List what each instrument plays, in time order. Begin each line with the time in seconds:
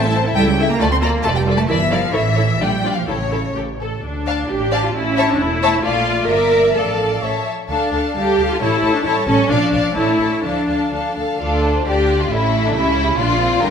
Already playing: double bass section A1, violin section A5
0.03 viola section E4 A4, violin section E5
0.15 viola section C4 C5, violin section A5
0.26 viola section E4 A4, violin section E5
0.35 double bass section C#2, cello section G3, viola section E4 A4, violin section E5 G5
0.47 cello section G3, violin section G5
0.59 viola section E4 A4, violin section E5
0.69 cello section A#3, violin section A#5
0.79 double bass section D2, cello section A3, viola section F4 A4, violin section D5 A5
0.91 cello section C4, violin section C6
1.01 cello section A#3, viola section F4 A4, violin section A#5
1.05 violin section D5
1.23 double bass section F1, cello section A3, viola section F4 A4, violin section A5
1.28 violin section D5
1.35 cello section G3, violin section G5
1.47 viola section F4 A4, violin section D5
1.57 cello section A3, violin section A5
1.68 double bass section G1, cello section E3, viola section E4 A#4, violin section D5 E5
1.90 cello section F3, viola section E4 A#4, violin section D5 F5
2.12 double bass section A1, cello section E3, viola section E4 A4, violin section C#5 E5
2.35 viola section E4 A4, violin section C#5
2.59 double bass section A#1, cello section G3, viola section D4 F4, violin section D5 G5
2.84 viola section D4 F4, violin section D5
2.95 cello section F3, violin section F5
3.07 double bass section A1, cello section C#3, viola section E4 A4, violin section A4 C#5
3.31 viola section E4 A4, violin section A4
3.55 double bass section A1, viola section G4, violin section A4
3.81 viola section A4, violin section A4
4.03 double bass section D2, viola section D4
4.27 violin section D5 F5 A5
4.49 double bass section A1, cello section D4, viola section G4
4.71 violin section D5 F5 A5
4.85 viola section F4
4.94 double bass section A1, cello section C#4, viola section E4
5.17 violin section C#5 E5 A5
5.30 viola section D4
5.39 double bass section E1, cello section A3, viola section E4
5.63 violin section C#5 E5 A5
5.85 double bass section A#1, viola section F4, violin section D5 F5
6.28 double bass section G1, cello section A#3, viola section A#4, violin section D5 E5
6.74 double bass section A1, cello section F3, viola section A4, violin section D5 F5 A5
7.22 double bass section A1, violin section C#5 E5 A5
7.69 double bass section D2, viola section D4, violin section A4 F5 A5
7.91 double bass section D2, violin section A4 F5 A5
8.15 double bass section D2, cello section G3, viola section G4, violin section A4 F5 A5
8.37 double bass section D2, violin section A4 F5 A5
8.51 viola section F4
8.58 double bass section A1, cello section A3, viola section E4, violin section A4 C#5 A5
8.82 double bass section A1, violin section A4 C#5 A5
8.94 viola section D4
9.04 double bass section A1, cello section G3, viola section E4, violin section A4 C#5 A5
9.28 double bass section A1, viola section C#4, violin section A4 C#5 A5
9.49 double bass section A#1, cello section F3, viola section D4, violin section D5 F5
9.73 double bass section A#1, violin section D5 F5
9.96 double bass section A1, cello section A3, viola section E4, violin section A4 C#5 A5
10.18 double bass section A1, violin section A4 C#5 A5
10.43 double bass section D2, cello section F3, viola section D4, violin section A4 F5 A5
10.68 double bass section D2, violin section A4 F5 A5
10.92 double bass section D2, violin section A4 F5 A5
11.16 double bass section D2, violin section A4 F5 A5
11.39 double bass section D2, cello section D2, violin section D4 F5, viola section F4 A4
11.63 violin section C5
11.86 double bass section D2, cello section D3, viola section D4 F4, violin section G4 D5
12.21 violin section F4
12.31 double bass section A1, cello section A2, viola section C#4 A4, violin section E4 E5
12.66 violin section D4
12.75 double bass section C#2, cello section C#3, viola section C#4 G4, violin section E4 E5
12.99 violin section E5
13.18 double bass section A#1, cello section A#2, viola section D4 F4, violin section F4 D5
13.40 viola section C4
13.63 double bass section G1, cello section G2, viola section D4 E4, violin section A#4 G5